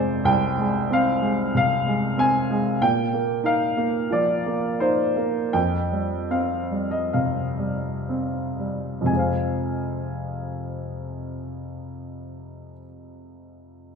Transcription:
Already playing: F2 C3 G#3 C4 C5 D5 F5
0.25 C2 G5
0.58 G#3
0.91 C4 F5
1.21 G#3
1.55 C3 F5
1.86 G#3
2.18 C4 G#5
2.50 G#3
2.82 A#2 G5
3.13 A#3
3.44 D#4 F5
3.77 A#3
4.11 F3 D5
4.46 A#3
4.80 D#4 C5
5.16 A#3
5.53 F2 G5
5.92 G3
6.30 C4 F5
6.71 G3
6.91 D#5
7.13 C3 F5
7.59 G3
8.09 C4
8.59 G3
9.01 F2 C3
9.06 G#3 G#5
9.12 F4 C5
9.19 F5

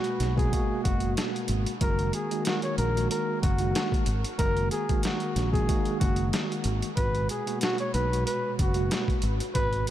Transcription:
Already playing: B2 G#3 A#3 F#4
0.04 closed hi-hat
0.20 B1, snare, closed hi-hat
0.35 B2 G#3 A#3 F#4 G#4, kick
0.39 closed hi-hat
0.52 B2 G#3 A#3 F#4, kick, closed hi-hat
0.83 F#1 F#4, kick, closed hi-hat
1.00 closed hi-hat
1.17 snare, closed hi-hat
1.36 closed hi-hat
1.48 G#1, closed hi-hat
1.66 closed hi-hat
1.81 F#1 D#3 G#3 A#3 F#4 A#4, kick, closed hi-hat
1.99 closed hi-hat
2.13 G#4, closed hi-hat
2.31 D#3 G#3 A#3 F#4, closed hi-hat
2.45 F#4, snare, closed hi-hat
2.62 C#5, closed hi-hat
2.78 A#1 A#4, closed hi-hat
2.95 D#3 G#3 A#3 F#4, closed hi-hat
3.10 A#4, closed hi-hat
3.42 F#1 F#4, kick, closed hi-hat
3.58 D#3 G#3 A#3 F#4, closed hi-hat
3.75 snare, closed hi-hat
3.92 kick, closed hi-hat
4.06 G#1, closed hi-hat
4.25 closed hi-hat
4.38 F#1 D#3 G#3 A#3 F#4 A#4, kick, closed hi-hat
4.57 closed hi-hat
4.71 G#4, closed hi-hat
4.88 D#3 G#3 A#3 F#4, kick, closed hi-hat
5.03 F#4, snare, closed hi-hat
5.20 closed hi-hat
5.36 A#1, snare, closed hi-hat
5.51 D#3 G#3 A#3 F#4 G#4, kick
5.55 closed hi-hat
5.68 D#3 G#3 A#3 F#4, kick, closed hi-hat
5.85 closed hi-hat
5.99 F#1 F#4, kick, closed hi-hat
6.16 closed hi-hat
6.33 snare, closed hi-hat
6.52 closed hi-hat
6.64 G#1, closed hi-hat
6.82 closed hi-hat
6.96 G#1 A#2 B2 G#3 F#4 B4, kick, closed hi-hat
7.15 closed hi-hat
7.29 G#4, closed hi-hat
7.46 B2 G#3 A#3 F#4, closed hi-hat
7.61 F#4, snare, closed hi-hat
7.78 C#5, closed hi-hat
7.93 B1 B4, closed hi-hat
8.12 A#2 B2 G#3 F#4, closed hi-hat
8.26 B4, closed hi-hat
8.59 F#1 F#4, kick, closed hi-hat
8.74 B2 G#3 A#3 F#4, closed hi-hat
8.91 snare, closed hi-hat
9.08 kick, closed hi-hat
9.22 G#1, closed hi-hat
9.40 closed hi-hat
9.54 G#1 A#2 B2 G#3 F#4 B4, kick, closed hi-hat
9.73 closed hi-hat
9.87 closed hi-hat

